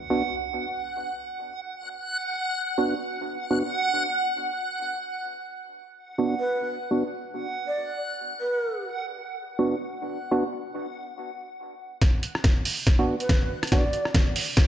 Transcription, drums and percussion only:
12.02 kick medium
12.02 snare soft
12.02 closed hi-hat medium
12.23 closed hi-hat medium
12.35 cross-stick medium
12.44 kick medium
12.44 snare soft
12.44 closed hi-hat medium
12.65 open hi-hat medium
12.87 kick medium
12.87 snare soft
12.87 closed hi-hat medium
13.20 closed hi-hat medium
13.29 kick loud
13.29 snare medium
13.29 closed hi-hat medium
13.63 cross-stick medium
13.63 closed hi-hat soft
13.67 closed hi-hat medium
13.72 kick medium
13.72 snare medium
13.72 closed hi-hat medium
13.93 closed hi-hat medium
14.05 cross-stick soft
14.15 kick loud
14.15 snare medium
14.15 closed hi-hat medium
14.36 open hi-hat medium
14.57 kick loud
14.57 snare medium
14.57 closed hi-hat medium

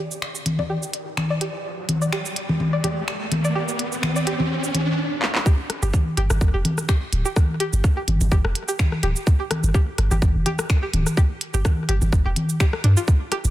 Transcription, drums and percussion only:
0.11 cabasa soft
0.22 finger snap loud
0.35 cabasa soft
0.46 closed hi-hat medium
0.46 high conga medium
0.59 low conga medium
0.83 cabasa soft
0.93 closed hi-hat medium
1.17 finger snap loud
1.17 high conga medium
1.41 closed hi-hat loud
1.89 closed hi-hat loud
1.89 high conga medium
2.02 cabasa soft
2.13 finger snap loud
2.25 cabasa soft
2.36 closed hi-hat medium
2.49 low conga loud
2.60 high conga medium
2.84 closed hi-hat loud
2.84 low conga medium
3.08 finger snap loud
3.32 closed hi-hat loud
3.32 high conga medium
3.45 cabasa soft
3.68 cabasa soft
3.79 closed hi-hat loud
3.92 cabasa soft
4.03 finger snap loud
4.03 high conga medium
4.16 cabasa soft
4.27 closed hi-hat medium
4.40 low conga medium
4.64 cabasa soft
4.74 closed hi-hat medium
4.74 high conga medium
5.22 clap medium
5.35 clap medium
5.46 kick loud
5.46 cabasa soft
5.70 cross-stick soft
5.70 closed hi-hat medium
5.83 cabasa medium
5.93 kick loud
5.93 high conga medium
5.93 cabasa soft
6.17 closed hi-hat medium
6.30 cross-stick medium
6.30 low conga loud
6.30 cabasa medium
6.41 kick loud
6.41 cabasa soft
6.65 closed hi-hat medium
6.65 high conga medium
6.65 low conga medium
6.78 cross-stick soft
6.78 cabasa medium
6.89 finger snap loud
6.89 kick loud
6.89 cabasa soft
7.13 closed hi-hat medium
7.25 cabasa medium
7.36 kick loud
7.36 cross-stick medium
7.36 high conga medium
7.36 cabasa soft
7.60 closed hi-hat loud
7.73 cabasa medium
7.84 kick loud
7.84 cross-stick soft
7.84 cabasa soft
8.08 closed hi-hat medium
8.08 high conga medium
8.21 low conga loud
8.21 cabasa medium
8.32 kick loud
8.32 cabasa soft
8.45 cross-stick medium
8.55 closed hi-hat medium
8.68 cabasa medium
8.79 finger snap loud
8.79 kick loud
8.79 high conga medium
8.79 cabasa soft
8.92 cross-stick soft
9.03 closed hi-hat loud
9.16 cabasa medium
9.27 kick loud
9.27 cabasa soft
9.51 cross-stick medium
9.51 closed hi-hat loud
9.51 high conga medium
9.64 cabasa medium
9.74 kick loud
9.74 cabasa soft
9.98 cross-stick soft
9.98 closed hi-hat loud
10.11 low conga medium
10.11 cabasa medium
10.22 kick loud
10.22 high conga medium
10.22 cabasa soft
10.46 closed hi-hat loud
10.46 low conga medium
10.59 cross-stick medium
10.59 cabasa medium
10.70 finger snap loud
10.70 kick loud
10.70 cabasa soft
10.94 closed hi-hat loud
10.94 high conga medium
11.06 cross-stick soft
11.06 cabasa medium
11.17 kick loud
11.17 cabasa soft
11.41 closed hi-hat loud
11.54 cabasa soft
11.65 kick loud
11.65 cross-stick medium
11.65 high conga medium
11.65 cabasa soft
11.89 closed hi-hat loud
12.02 low conga loud
12.02 cabasa soft
12.13 kick loud
12.13 cross-stick soft
12.13 cabasa soft
12.36 closed hi-hat loud
12.36 high conga medium
12.49 cabasa medium
12.60 finger snap loud
12.60 kick loud
12.60 cabasa soft
12.73 cross-stick medium
12.84 closed hi-hat loud
12.97 cabasa medium
13.08 kick loud
13.08 cabasa soft
13.32 cross-stick soft
13.32 closed hi-hat medium
13.45 cabasa soft

